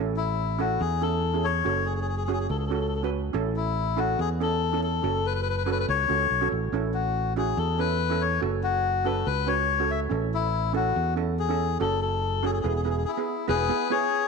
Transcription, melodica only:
0.17 0.60 E4 medium
0.60 0.82 F#4 medium
0.81 1.02 G#4 medium
1.02 1.46 A4 medium
1.44 1.88 C#5 medium
1.86 1.93 G#4 medium
1.95 2.00 G#4 medium
2.01 2.07 G#4 medium
2.08 2.15 G#4 medium
2.17 2.23 G#4 medium
2.25 2.31 G#4 medium
2.33 2.39 G#4 medium
2.40 2.47 G#4 medium
2.50 2.57 A4 medium
2.59 2.65 A4 medium
2.66 2.71 A4 medium
2.73 2.79 A4 medium
2.81 2.87 A4 medium
2.88 2.94 A4 medium
2.96 3.02 A4 medium
3.04 3.10 A4 medium
3.57 4.00 E4 medium
3.99 4.20 F#4 medium
4.20 4.29 G#4 medium
4.42 4.81 A4 medium
4.83 5.27 A4 medium
5.26 5.33 B4 medium
5.35 5.41 B4 medium
5.42 5.48 B4 medium
5.49 5.56 B4 medium
5.57 5.63 B4 medium
5.65 5.70 B4 medium
5.72 5.78 B4 medium
5.80 5.86 B4 medium
5.89 6.48 C#5 loud
6.94 7.33 F#4 medium
7.37 7.59 G#4 medium
7.58 7.80 A4 medium
7.79 8.23 B4 medium
8.21 8.41 C#5 medium
8.63 9.07 F#4 medium
9.05 9.27 A4 medium
9.26 9.48 B4 medium
9.48 9.91 C#5 medium
9.91 10.00 E5 medium
10.34 10.73 E4 medium
10.75 11.14 F#4 medium
11.39 11.78 G#4 medium
11.81 12.00 A4 medium
12.02 12.45 A4 medium
12.45 12.51 G#4 medium
12.53 12.59 G#4 soft
12.61 12.67 G#4 medium
12.68 12.74 G#4 soft
12.75 12.81 G#4 medium
12.83 12.89 G#4 soft
12.90 12.96 G#4 soft
12.97 13.03 G#4 soft
13.05 13.46 E4 soft
13.05 13.11 G#4 medium
13.13 13.19 G#4 soft
13.48 13.88 G#4 medium
13.48 13.92 B4 medium
13.91 14.28 G#4 medium
13.91 14.28 C#5 medium

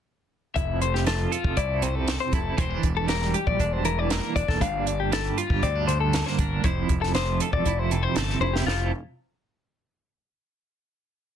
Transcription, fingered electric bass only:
0.56 1.25 F1 medium
1.44 1.54 F1 medium
1.57 2.16 C2 medium
2.33 2.52 F1 medium
2.58 2.78 E1 medium
2.83 3.33 E1 medium
3.47 3.57 A#1 medium
3.59 4.19 E1 medium
4.36 4.46 E1 medium
4.48 4.61 E1 medium
4.61 5.30 G1 medium
5.50 5.60 G1 medium
5.63 6.22 D2 medium
6.39 6.58 G1 medium
6.64 6.84 F1 medium
6.90 7.39 F1 medium
7.53 7.63 E1 medium
7.66 8.05 F1 medium
8.16 8.39 G1 medium
8.40 8.64 F1 medium
8.66 8.90 F1 medium

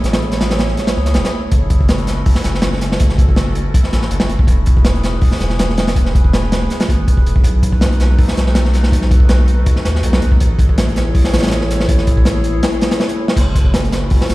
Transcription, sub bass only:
0.04 0.76 A1 loud
0.96 1.16 C#2 loud
1.15 1.24 E1 medium
1.52 2.24 F#1 loud
2.26 2.35 F#1 medium
2.44 2.99 F#1 medium
3.00 3.73 F#1 loud
3.92 4.09 A1 medium
4.11 4.28 F#1 medium
4.29 4.46 F#1 medium
4.47 5.20 E1 loud
5.22 5.31 E1 medium
5.41 5.95 E1 medium
5.96 6.69 E1 medium
6.89 7.05 G#1 medium
7.08 7.24 E1 medium
7.26 7.43 E1 medium
7.44 8.17 B1 loud
8.19 8.27 B1 medium
8.37 8.91 B1 medium
8.92 9.65 B1 loud
9.85 10.02 D#2 loud
10.03 10.20 B1 medium
10.22 10.39 B1 medium
10.41 11.14 A1 loud
11.15 11.23 A1 medium
11.33 11.87 A1 loud
11.89 12.61 A1 loud
13.37 14.09 F#1 loud
14.11 14.20 F#1 medium
14.29 14.35 F#1 medium

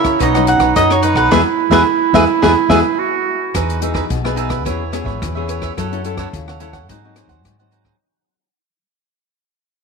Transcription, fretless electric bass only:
0.21 0.56 B1 medium
0.58 0.72 B1 medium
0.76 1.12 F#2 medium
1.14 1.27 B1 medium
1.32 1.42 E2 medium
1.70 1.82 E2 medium
2.13 2.24 E2 medium
2.43 2.54 E2 medium
2.69 2.80 E2 medium
3.55 4.02 E2 medium
4.10 4.66 B1 medium
4.66 5.01 E2 medium
5.04 5.23 G#1 medium
5.22 5.69 E2 medium
5.78 6.25 F#2 medium
6.33 6.89 D#2 medium
6.89 7.25 G#2 medium
7.27 7.45 D#2 medium
7.45 7.92 G#2 medium

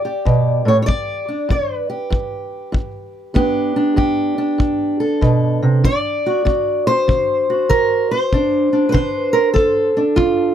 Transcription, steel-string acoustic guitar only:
0.00 0.21 C3 medium
0.00 0.67 D5 loud
0.05 1.28 G4 soft
0.25 0.65 B2 medium
0.65 0.87 A2 medium
0.65 0.76 C#5 medium
0.82 0.86 C#5 medium
0.82 1.89 D5 loud
0.87 1.45 G2 medium
1.28 1.51 D4 soft
1.49 2.07 G2 medium
1.49 3.35 B4 medium
1.90 3.35 G4 soft
2.10 2.69 G2 medium
2.72 3.31 G2 medium
3.34 3.93 G2 medium
3.34 5.84 B3 medium
3.34 3.76 D4 medium
3.34 3.96 G4 medium
3.76 4.38 D4 medium
3.96 4.55 G2 medium
3.96 5.00 G4 medium
4.38 7.69 D4 medium
4.58 5.17 G2 medium
5.00 5.81 A4 medium
5.21 5.62 B2 medium
5.62 5.84 C3 medium
5.84 6.42 D3 medium
5.84 6.87 D5 loud
6.26 6.45 F#4 soft
6.45 7.03 D3 medium
6.45 7.48 F#4 soft
6.87 8.10 C5 medium
7.08 7.66 D3 medium
7.50 8.30 F#4 soft
7.69 8.27 D3 medium
7.69 8.10 A#4 loud
8.11 8.91 C5 medium
8.33 8.90 D3 medium
8.33 8.72 D4 soft
8.73 9.96 D4 soft
8.89 9.32 B4 medium
8.89 9.96 C5 medium
8.94 9.52 D3 medium
9.33 9.53 A#4 medium
9.54 10.13 D3 medium
9.54 10.55 A4 medium
9.97 10.55 D4 medium
10.16 10.55 D3 medium
10.16 10.55 F4 medium

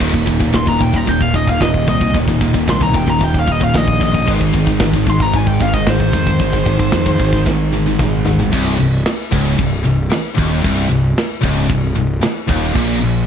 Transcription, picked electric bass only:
0.00 0.25 D#1 medium
0.27 0.52 D#1 medium
0.54 0.79 D#1 medium
0.80 1.05 D#1 loud
1.07 1.32 D#1 loud
1.34 1.59 D#1 loud
1.61 1.86 D#1 medium
1.88 2.12 C2 medium
2.14 2.39 D#1 medium
2.41 2.66 D#1 medium
2.68 2.92 C2 medium
2.94 3.19 D#1 medium
3.21 3.70 D#1 loud
3.75 4.24 A#1 medium
4.27 4.52 G#1 medium
4.54 4.79 G#1 medium
4.81 5.05 G#1 medium
5.07 5.32 G#1 medium
5.33 5.58 G#1 loud
5.60 5.85 G#1 loud
5.88 6.12 G#1 medium
6.13 6.38 F2 medium
6.40 6.65 G#1 medium
6.66 6.91 G#1 medium
6.93 7.17 F2 medium
7.20 7.44 G#1 loud
7.46 7.95 G#1 loud
8.00 8.48 G#1 medium
8.53 8.77 C1 medium
8.80 9.04 C1 medium
9.32 9.57 C#1 medium
9.59 9.83 C1 medium
9.86 10.10 C1 medium
10.11 muted picked electric bass stroke soft
10.38 10.63 D#1 medium
10.64 10.89 C1 medium
10.90 11.15 C1 medium
11.44 11.68 C#1 medium
11.70 11.95 C1 medium
11.96 12.21 C1 medium
12.24 muted picked electric bass stroke soft
12.49 12.74 D#1 loud
12.76 13.00 A#1 medium
13.03 13.27 A#1 medium

